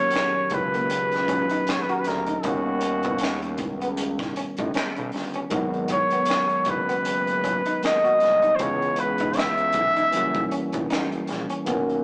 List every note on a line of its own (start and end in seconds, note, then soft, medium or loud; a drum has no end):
0.00 1.25 A#2 medium
0.00 1.24 D#3 medium
0.00 1.24 F#3 medium
0.00 2.45 B3 soft
0.00 1.26 C#4 medium
0.00 1.27 F#4 medium
0.00 2.45 G4 medium
0.00 0.56 C#5 loud
0.11 0.29 C#4 medium
0.11 closed hi-hat medium
0.16 finger snap medium
0.16 snare loud
0.50 1.46 C#2 medium
0.50 muted clean electric guitar stroke soft
0.50 kick loud
0.50 closed hi-hat medium
0.54 1.73 B4 loud
0.74 0.86 A#3 medium
0.74 closed hi-hat soft
0.90 muted clean electric guitar stroke soft
0.90 closed hi-hat medium
1.12 snare soft
1.12 closed hi-hat soft
1.28 2.44 A#2 soft
1.28 2.44 F#3 soft
1.28 1.44 C#4 medium
1.28 2.45 C#4 soft
1.28 2.44 D#4 soft
1.28 2.45 F#4 soft
1.28 kick medium
1.28 closed hi-hat medium
1.49 1.63 D#4 medium
1.49 closed hi-hat medium
1.67 finger snap medium
1.67 snare loud
1.67 closed hi-hat medium
1.71 1.83 C#5 medium
1.82 1.93 B4 medium
1.89 2.01 F#4 medium
1.89 2.01 A#4 medium
1.89 closed hi-hat soft
1.99 2.09 B4 medium
2.04 2.37 D2 medium
2.04 2.48 A#4 medium
2.04 muted clean electric guitar stroke soft
2.04 snare soft
2.04 closed hi-hat medium
2.26 2.39 D#4 medium
2.26 closed hi-hat soft
2.42 3.61 D#2 loud
2.42 5.47 D#3 medium
2.42 5.47 G3 medium
2.42 5.48 B3 medium
2.42 2.60 D#4 medium
2.42 3.99 F#4 loud
2.42 kick loud
2.42 closed hi-hat medium
2.46 5.49 C#4 medium
2.46 5.49 F#4 medium
2.81 muted clean electric guitar stroke soft
2.81 closed hi-hat medium
3.03 3.16 B3 medium
3.03 kick medium
3.03 closed hi-hat soft
3.18 3.36 C#4 medium
3.18 closed hi-hat medium
3.23 finger snap medium
3.23 snare loud
3.42 closed hi-hat soft
3.58 4.20 C#2 medium
3.58 muted clean electric guitar stroke soft
3.58 kick medium
3.58 closed hi-hat medium
3.81 3.93 B3 medium
3.81 closed hi-hat soft
3.97 muted clean electric guitar stroke soft
3.97 closed hi-hat medium
4.19 kick medium
4.19 snare soft
4.19 closed hi-hat soft
4.36 4.46 A1 soft
4.36 4.52 C#4 medium
4.36 closed hi-hat medium
4.57 4.72 A1 medium
4.57 4.70 D#4 medium
4.57 kick loud
4.57 closed hi-hat soft
4.74 4.90 C#4 medium
4.74 finger snap medium
4.74 snare loud
4.74 closed hi-hat medium
4.96 5.11 B1 medium
4.96 closed hi-hat soft
5.12 5.45 G1 medium
5.12 muted clean electric guitar stroke soft
5.12 snare soft
5.12 open hi-hat soft
5.34 5.47 C#4 medium
5.34 closed hi-hat soft
5.50 5.99 G#1 loud
5.50 7.77 D#3 medium
5.50 7.79 F#3 medium
5.50 7.78 G#3 medium
5.50 5.67 D#4 medium
5.50 kick loud
5.50 closed hi-hat medium
5.54 7.79 B3 medium
5.54 7.80 F#4 medium
5.74 closed hi-hat soft
5.88 6.71 C#5 loud
5.88 muted clean electric guitar stroke soft
5.88 kick medium
5.88 closed hi-hat medium
6.10 6.20 F#1 soft
6.10 6.24 B3 medium
6.10 closed hi-hat soft
6.25 6.44 C#4 medium
6.25 closed hi-hat medium
6.30 finger snap medium
6.30 snare loud
6.49 closed hi-hat soft
6.65 7.62 F#1 medium
6.65 muted clean electric guitar stroke soft
6.65 kick medium
6.65 closed hi-hat medium
6.70 7.84 B4 medium
6.89 7.01 B3 medium
6.89 closed hi-hat soft
7.05 muted clean electric guitar stroke soft
7.05 closed hi-hat medium
7.27 closed hi-hat soft
7.44 7.59 C#4 medium
7.44 kick medium
7.44 closed hi-hat medium
7.65 7.78 D#4 medium
7.65 closed hi-hat medium
7.82 8.59 D#3 soft
7.82 8.58 G#3 soft
7.82 8.60 A#3 soft
7.82 8.59 B3 soft
7.82 8.60 F#4 soft
7.82 8.57 D#5 loud
7.82 finger snap loud
7.82 snare loud
7.82 closed hi-hat medium
8.04 8.16 F#4 medium
8.04 closed hi-hat soft
8.20 8.53 C2 loud
8.20 muted clean electric guitar stroke soft
8.20 snare soft
8.20 closed hi-hat medium
8.42 8.54 D#4 medium
8.42 closed hi-hat soft
8.55 10.09 E3 medium
8.55 10.10 G#3 medium
8.55 8.63 C5 medium
8.55 closed hi-hat medium
8.60 9.71 C#2 loud
8.60 10.11 B3 medium
8.60 8.75 C#4 medium
8.60 10.11 C#4 medium
8.60 10.12 G#4 medium
8.60 9.01 C#5 loud
8.60 kick loud
8.82 closed hi-hat soft
8.96 9.40 B4 medium
8.96 muted clean electric guitar stroke soft
8.96 closed hi-hat medium
9.18 9.32 D#4 medium
9.18 kick medium
9.18 closed hi-hat soft
9.33 9.52 E4 medium
9.33 closed hi-hat medium
9.38 10.91 E5 loud
9.38 finger snap medium
9.38 snare loud
9.57 closed hi-hat soft
9.72 10.05 B1 loud
9.72 muted clean electric guitar stroke soft
9.72 kick medium
9.72 closed hi-hat medium
9.96 10.08 D#4 medium
9.96 closed hi-hat soft
10.12 10.45 F#1 loud
10.12 11.63 E3 medium
10.12 11.64 G3 medium
10.12 11.64 A#3 medium
10.12 11.65 C#4 medium
10.12 muted clean electric guitar stroke soft
10.12 closed hi-hat medium
10.17 11.66 F#4 medium
10.34 kick medium
10.34 closed hi-hat soft
10.51 10.62 G1 soft
10.51 10.67 C#4 medium
10.51 closed hi-hat medium
10.72 10.88 G1 medium
10.72 10.85 C#4 medium
10.72 kick loud
10.72 closed hi-hat medium
10.90 11.22 F#1 medium
10.90 11.05 D#4 medium
10.90 finger snap medium
10.90 snare loud
10.90 closed hi-hat medium
11.12 closed hi-hat soft
11.27 11.47 A#1 loud
11.27 muted clean electric guitar stroke soft
11.27 snare soft
11.27 closed hi-hat medium
11.50 11.62 C#4 medium
11.50 closed hi-hat soft
11.65 12.04 B1 medium
11.65 12.04 D#3 medium
11.65 12.04 A#3 medium
11.65 11.82 B3 medium
11.65 12.04 B3 medium
11.65 kick loud
11.65 closed hi-hat medium
11.69 12.04 C#4 medium
11.69 12.04 F#4 medium
11.89 closed hi-hat soft